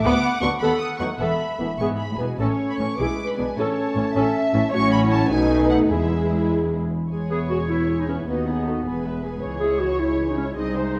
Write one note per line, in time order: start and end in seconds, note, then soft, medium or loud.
0.04 0.12 D2 medium
0.04 0.22 B3 medium
0.04 0.22 B4 medium
0.04 0.59 F#5 medium
0.04 0.41 D6 loud
0.41 0.50 D2 medium
0.41 0.50 D3 medium
0.41 0.48 F#3 medium
0.41 0.48 B3 medium
0.41 0.50 D4 medium
0.41 0.50 C#6 loud
0.60 0.69 D#2 medium
0.60 0.80 B3 medium
0.60 0.80 A4 medium
0.60 1.18 F#5 medium
0.60 0.80 B5 medium
0.80 0.88 D#6 medium
0.99 1.08 D#2 soft
0.99 1.08 F#3 medium
0.99 1.06 A3 medium
0.99 1.06 B3 medium
0.99 1.08 D#4 soft
0.99 1.07 C#6 medium
1.19 1.28 E1 medium
1.19 1.28 E2 medium
1.19 1.38 B3 medium
1.19 1.38 A4 medium
1.19 2.09 E5 medium
1.19 1.78 B5 medium
1.58 1.68 E1 soft
1.58 1.67 E2 soft
1.58 1.68 E3 soft
1.58 1.66 A3 soft
1.58 1.66 B3 medium
1.58 1.68 B3 soft
1.79 1.88 E1 medium
1.79 2.07 G#2 medium
1.79 1.98 B3 medium
1.79 1.98 G#4 medium
1.79 1.87 C#6 medium
1.98 2.18 B5 medium
2.11 2.14 A2 soft
2.18 2.27 E1 soft
2.18 2.39 B2 medium
2.18 2.28 E3 soft
2.18 2.26 G#3 soft
2.18 2.26 B3 soft
2.18 2.28 B3 soft
2.18 2.39 G#5 medium
2.38 2.47 A1 medium
2.38 2.47 A2 medium
2.38 2.94 A3 medium
2.38 2.94 C#4 medium
2.38 2.58 C#4 medium
2.38 2.58 A4 soft
2.38 2.95 C#5 medium
2.38 2.47 A5 medium
2.69 2.79 B5 medium
2.78 2.87 A1 soft
2.78 2.86 A2 soft
2.78 2.87 E3 soft
2.78 2.87 C#4 soft
2.78 2.98 C#6 medium
2.98 3.07 B1 medium
2.98 3.06 B2 medium
2.98 3.56 G#3 medium
2.98 3.11 E4 medium
2.98 3.17 E4 medium
2.98 3.17 G#4 medium
2.98 3.57 B4 medium
2.98 3.28 D6 medium
3.26 3.55 D4 medium
3.26 3.38 B5 medium
3.37 3.46 B1 soft
3.37 3.45 B2 soft
3.37 3.46 B3 soft
3.37 3.46 D4 medium
3.37 3.56 G#5 medium
3.56 3.65 A1 medium
3.56 3.64 A2 medium
3.56 4.72 A3 medium
3.56 4.71 C#4 medium
3.56 3.75 C#4 medium
3.56 3.75 A4 medium
3.56 4.15 C#5 medium
3.56 4.73 A5 medium
3.95 4.04 A1 soft
3.95 4.03 A2 medium
3.95 4.04 E3 medium
3.95 4.04 C#4 medium
4.13 4.23 A1 medium
4.13 4.22 A2 medium
4.13 4.33 C#4 medium
4.13 4.33 A4 medium
4.13 4.71 E5 medium
4.53 4.61 A1 medium
4.53 4.60 A2 medium
4.53 4.61 E3 medium
4.53 4.61 C#4 medium
4.71 5.27 A1 medium
4.71 5.27 A2 medium
4.71 5.30 F#3 medium
4.71 5.30 C#4 medium
4.71 5.27 C#4 medium
4.71 4.81 F#4 medium
4.71 5.30 C#5 medium
4.71 4.91 C#6 loud
4.92 5.00 B5 medium
5.02 5.30 E4 medium
5.11 5.30 A5 loud
5.30 5.91 B1 medium
5.30 5.90 B2 medium
5.30 5.91 A3 medium
5.30 5.89 D#4 medium
5.30 5.90 D#4 medium
5.30 5.90 B4 medium
5.30 5.70 G#5 loud
5.70 5.78 F#5 medium
5.90 6.89 E1 medium
5.90 6.89 E2 medium
5.90 6.47 E2 medium
5.90 6.91 G#3 medium
5.90 6.91 E4 medium
5.90 6.92 E4 medium
5.90 6.81 G#4 medium
5.90 6.49 E5 medium
7.11 8.24 E1 soft
7.11 8.24 E2 soft
7.11 7.30 G#3 soft
7.11 7.30 G#4 soft
7.11 8.23 C#5 medium
7.11 7.29 G#5 soft
7.30 7.50 B3 soft
7.30 7.40 G#4 medium
7.30 7.50 B4 soft
7.30 7.50 E5 soft
7.50 7.70 G#3 soft
7.50 7.59 F#4 medium
7.50 7.70 G#4 soft
7.50 7.70 G#5 soft
7.68 7.89 B3 soft
7.68 8.02 E4 medium
7.68 7.89 B4 soft
7.68 7.89 E5 soft
7.88 8.07 G#3 soft
7.88 8.07 G#4 soft
7.88 8.06 G#5 soft
8.00 8.08 D#4 soft
8.08 8.28 B3 soft
8.08 8.17 C#4 medium
8.08 8.28 B4 soft
8.08 8.27 E5 soft
8.27 8.85 D#2 soft
8.27 9.21 B3 medium
8.27 8.46 D#4 soft
8.27 8.46 F#4 soft
8.27 8.47 B4 soft
8.27 8.46 D#5 soft
8.47 8.67 B3 soft
8.47 8.66 D#4 soft
8.47 8.66 G#4 soft
8.47 8.66 F#5 soft
8.65 8.86 D#4 soft
8.65 8.86 F#4 soft
8.65 8.85 A4 soft
8.65 8.85 D#5 soft
8.84 9.43 E1 medium
8.84 9.42 E2 soft
8.84 9.03 B3 soft
8.84 9.03 G#4 soft
8.84 9.40 B4 soft
8.84 9.03 G#5 soft
9.03 9.24 G#3 soft
9.03 9.24 B4 soft
9.03 9.23 E5 soft
9.23 9.42 B3 soft
9.23 9.41 G#4 soft
9.23 9.42 G#5 soft
9.41 10.57 C#2 soft
9.41 9.60 E3 soft
9.41 9.60 G#4 soft
9.41 10.56 C#5 medium
9.41 9.60 C#5 soft
9.60 9.80 G#3 soft
9.60 9.80 E4 soft
9.60 9.81 G#4 medium
9.60 9.80 E5 soft
9.79 9.99 E3 soft
9.79 10.01 F#4 medium
9.79 9.99 G#4 soft
9.79 9.99 C#5 soft
9.99 10.19 G#3 soft
9.99 10.28 E4 medium
9.99 10.19 E4 soft
9.99 10.18 E5 soft
10.17 10.36 E3 soft
10.17 10.36 G#4 soft
10.17 10.36 C#5 soft
10.29 10.36 D#4 medium
10.37 10.57 G#3 soft
10.37 10.46 C#4 medium
10.37 10.57 E4 soft
10.37 10.57 E5 soft
10.56 11.00 C2 medium
10.56 11.00 C2 soft
10.56 10.75 C4 medium
10.56 11.00 D#4 medium
10.56 10.75 G#4 soft
10.56 10.74 C5 soft
10.56 10.76 D#5 medium
10.75 10.96 G#3 medium
10.75 10.95 C5 medium
10.75 10.95 D#5 soft
10.94 11.00 C4 medium
10.94 11.00 G#4 medium
10.94 11.00 C5 soft